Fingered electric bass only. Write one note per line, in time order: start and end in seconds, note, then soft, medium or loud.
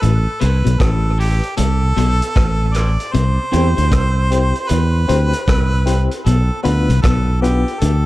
0.03 0.25 A1 medium
0.43 0.65 C2 medium
0.67 0.80 B1 medium
0.81 1.40 A1 loud
1.59 1.95 C2 medium
1.97 2.20 B1 medium
2.37 2.96 A1 medium
3.15 3.37 C2 loud
3.54 3.76 E2 medium
3.78 3.91 D2 medium
3.92 4.51 C2 medium
4.71 5.07 E2 medium
5.10 5.32 D2 medium
5.48 6.07 C2 medium
6.27 6.49 B1 loud
6.65 6.88 D2 medium
6.89 7.03 C2 medium
7.04 7.63 B1 medium
7.82 8.06 D2 loud